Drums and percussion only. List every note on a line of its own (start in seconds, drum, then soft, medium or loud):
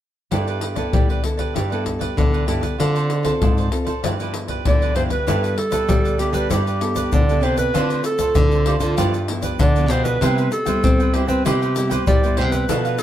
0.32 pandeiro medium
0.32 surdo medium
0.48 pandeiro soft
0.61 pandeiro medium
0.76 pandeiro medium
0.76 surdo soft
0.93 pandeiro medium
0.93 surdo loud
1.10 pandeiro soft
1.24 pandeiro medium
1.39 pandeiro soft
1.39 surdo soft
1.56 pandeiro medium
1.56 surdo medium
1.72 pandeiro soft
1.86 pandeiro medium
1.86 surdo soft
2.01 pandeiro medium
2.01 surdo soft
2.18 pandeiro medium
2.18 surdo medium
2.34 pandeiro soft
2.48 pandeiro medium
2.63 pandeiro medium
2.63 surdo soft
2.80 pandeiro medium
2.80 surdo medium
2.96 pandeiro soft
3.10 pandeiro medium
3.25 pandeiro medium
3.25 surdo soft
3.42 pandeiro medium
3.42 surdo medium
3.58 pandeiro soft
3.72 pandeiro medium
3.87 pandeiro soft
3.87 surdo soft
4.04 pandeiro medium
4.04 surdo medium
4.20 pandeiro soft
4.34 pandeiro medium
4.48 pandeiro soft
4.48 surdo soft
4.65 pandeiro medium
4.65 surdo loud
4.82 pandeiro soft
4.96 pandeiro medium
5.10 pandeiro medium
5.10 surdo soft
5.28 pandeiro medium
5.28 shaker medium
5.28 surdo medium
5.44 pandeiro soft
5.44 shaker soft
5.58 pandeiro medium
5.72 pandeiro medium
5.72 shaker medium
5.72 surdo soft
5.89 pandeiro medium
5.89 shaker medium
5.89 surdo medium
6.05 pandeiro soft
6.05 shaker soft
6.19 pandeiro medium
6.19 shaker medium
6.34 pandeiro soft
6.34 shaker medium
6.34 surdo soft
6.50 pandeiro medium
6.50 shaker medium
6.50 surdo medium
6.67 pandeiro soft
6.67 shaker soft
6.81 pandeiro medium
6.96 pandeiro medium
6.96 shaker medium
6.96 surdo soft
7.13 pandeiro medium
7.13 shaker medium
7.13 surdo loud
7.29 pandeiro soft
7.29 shaker soft
7.43 pandeiro medium
7.58 pandeiro soft
7.58 shaker medium
7.58 surdo soft
7.75 pandeiro medium
7.75 shaker medium
7.75 surdo medium
7.90 pandeiro soft
7.90 shaker soft
8.04 pandeiro medium
8.04 shaker medium
8.19 pandeiro medium
8.19 shaker medium
8.19 surdo soft
8.35 pandeiro medium
8.35 shaker medium
8.35 surdo loud
8.52 pandeiro soft
8.52 shaker soft
8.66 pandeiro medium
8.80 pandeiro medium
8.80 shaker medium
8.80 surdo soft
8.98 pandeiro medium
8.98 shaker medium
8.98 surdo medium
9.14 pandeiro soft
9.14 shaker soft
9.28 pandeiro medium
9.43 pandeiro medium
9.43 shaker medium
9.43 surdo soft
9.59 pandeiro medium
9.59 shaker medium
9.59 surdo loud
9.76 pandeiro soft
9.76 shaker soft
9.90 pandeiro medium
9.90 shaker medium
10.05 pandeiro medium
10.05 shaker medium
10.05 surdo soft
10.22 pandeiro medium
10.22 shaker medium
10.22 surdo medium
10.38 pandeiro soft
10.38 shaker soft
10.52 pandeiro medium
10.52 shaker medium
10.66 pandeiro medium
10.66 shaker medium
10.66 surdo soft
10.84 pandeiro medium
10.84 shaker medium
10.84 surdo loud
11.00 pandeiro soft
11.00 shaker soft
11.14 pandeiro medium
11.29 pandeiro soft
11.29 shaker medium
11.29 surdo soft
11.46 pandeiro medium
11.46 shaker medium
11.46 surdo medium
11.62 pandeiro soft
11.62 shaker soft
11.76 pandeiro medium
11.76 shaker medium
11.91 pandeiro medium
11.91 shaker medium
11.91 surdo soft
12.07 pandeiro medium
12.07 shaker medium
12.07 surdo loud
12.24 pandeiro soft
12.24 shaker soft
12.37 pandeiro medium
12.52 pandeiro medium
12.52 shaker medium
12.52 surdo soft
12.69 pandeiro medium
12.69 shaker medium
12.69 surdo medium
12.85 pandeiro soft
12.85 shaker soft
12.98 pandeiro medium
12.98 shaker medium